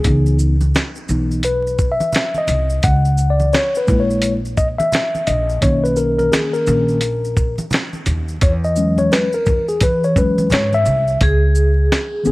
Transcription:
Already playing: G#4
0.04 C#2 E3 B3 D#4, kick, closed hi-hat, maracas
0.26 maracas
0.39 shaker, maracas
0.61 high conga, maracas
0.75 snare, closed hi-hat, high conga, maracas
0.95 maracas
1.09 B1 E3 B3 D#4, low conga, shaker, maracas
1.31 maracas
1.43 B4, closed hi-hat, maracas
1.67 maracas
1.79 kick, shaker, maracas
1.92 E5
2.00 high conga, maracas
2.13 snare, closed hi-hat, low conga, maracas
2.34 D#5, high conga, maracas
2.47 C2, closed hi-hat, high conga, low conga, maracas, shaker
2.70 maracas
2.83 C#2 F#5, kick, closed hi-hat, maracas
3.05 maracas
3.18 shaker, maracas
3.30 D5
3.40 high conga, maracas
3.53 C#5, snare, closed hi-hat, high conga, maracas
3.75 B4, maracas
3.87 A#1 G#3 A#3 E4, kick, low conga, shaker, maracas
4.00 C#5
4.10 maracas
4.22 closed hi-hat, maracas
4.45 maracas
4.57 D#5, kick, shaker, maracas
4.78 E5, high conga, maracas
4.92 snare, closed hi-hat, low conga, maracas
5.15 high conga, maracas
5.27 A#1 D#5, closed hi-hat, high conga, low conga, shaker, maracas
5.49 maracas
5.61 B1 D#3 A#3 C#4 C#5, kick, closed hi-hat, maracas
5.84 B4, maracas
5.96 A#4, shaker, maracas
6.19 A#4, high conga, maracas
6.32 G#4, snare, closed hi-hat, high conga, maracas
6.54 A#4, maracas
6.67 A#1 D#3 A#3 C#4, low conga, shaker, maracas
6.89 maracas
7.01 closed hi-hat, maracas
7.25 maracas
7.37 kick, maracas, shaker
7.58 high conga, maracas
7.71 snare, closed hi-hat, low conga, maracas
7.93 high conga, maracas
8.06 D#2, closed hi-hat, high conga, low conga, shaker, maracas
8.28 maracas
8.41 E2 C#5, kick, closed hi-hat, maracas
8.64 D#5, maracas
8.76 F#3 G#3 C#4, shaker, maracas
8.98 C#5, high conga, maracas
9.12 B4, snare, closed hi-hat, high conga, maracas
9.33 A#4, maracas
9.46 E2, kick, low conga, shaker, maracas
9.68 G#4, maracas
9.80 E3 B4, kick, closed hi-hat, maracas
10.04 C#5, maracas
10.16 E2 F#3 G#3 C#4 B4, kick, maracas, shaker
10.38 high conga, maracas
10.50 G#2 C#5, snare, closed hi-hat, low conga, maracas
10.73 E5, high conga, maracas
10.85 C2, high conga, low conga, maracas, shaker
11.08 maracas
11.21 C#2 G#4, kick, closed hi-hat
11.55 shaker
11.92 snare, closed hi-hat
12.24 B1 D#3 B3 C#4 G#4, shaker

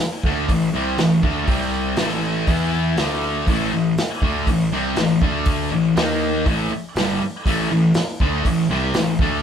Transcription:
0.24 D2 D3 A3 D4, kick
0.48 A1 A2 E3, kick, open hi-hat
0.72 C2 C3 G3 C4
0.98 A1 A2 E3, snare, open hi-hat
1.22 D2 D3 A3 D4, kick
1.47 C2 C3 G3 C4, kick, open hi-hat
1.97 A1 A2 E3 A3, snare, open hi-hat
2.47 E2 E3 B3 E4, kick, open hi-hat
2.97 D2 D3 A3 D4, snare, open hi-hat
3.46 A1 A2 E3, kick, open hi-hat
3.50 A3
3.72 A1 A2 E3
3.98 snare, open hi-hat
4.22 D2 D3 A3 D4, kick
4.46 A1 A2 E3, kick, open hi-hat
4.71 C2 C3 G3 C4
4.96 A1 A2 E3, snare, open hi-hat
5.22 D2 D3 A3 D4, kick
5.45 kick, open hi-hat
5.71 A1 A2 E3
5.97 D#2 D#3 A#3 D#4, snare, open hi-hat
6.46 A1 A2 E3 A3, kick, open hi-hat
6.70 muted picked electric bass stroke, muted distorted electric guitar stroke
6.95 G1 G2 D3 G3, snare, open hi-hat
7.22 muted picked electric bass stroke, muted distorted electric guitar stroke
7.45 A1 A2 E3 A3, kick, open hi-hat
7.70 A1 A2 E3
7.94 snare, open hi-hat
8.20 D2 D3 A3 D4, kick
8.44 A1 A2 E3, kick, open hi-hat
8.69 C2 C3 G3 C4
8.94 A1 A2 E3, snare, open hi-hat
9.19 D2 D3 A3 D4, kick

